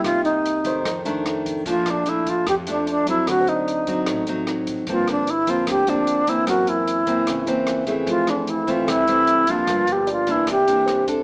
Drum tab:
HH |xxxxxxxx|xxxxxxxx|xxxxxxxx|xxxxxxxx|
SD |r---r-r-|-r--r---|r---r-r-|-r--r---|
BD |o--oo--o|o--oo---|o--oo--o|o--oo---|

HH |xxxxxxxx|xxxxxxxx|xxxxxxxx|
SD |r---r-r-|-r--r---|r---r-r-|
BD |o--oo--o|o--oo---|o--oo--o|